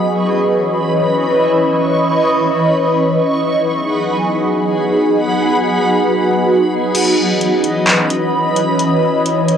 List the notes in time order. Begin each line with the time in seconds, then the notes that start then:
Already playing: E3 C#4 E4 B4 D#5 B5 C#6
3.25 F#3 B3 D#4 G#4 F#5 B5
5.10 F#4
6.94 E3 C#4 E4 B4 D#5 B5, closed hi-hat, crash
7.41 closed hi-hat
7.64 closed hi-hat
7.87 clap, closed hi-hat
8.10 closed hi-hat
8.56 closed hi-hat
8.79 C#5 C#6, closed hi-hat
9.26 closed hi-hat
9.48 closed hi-hat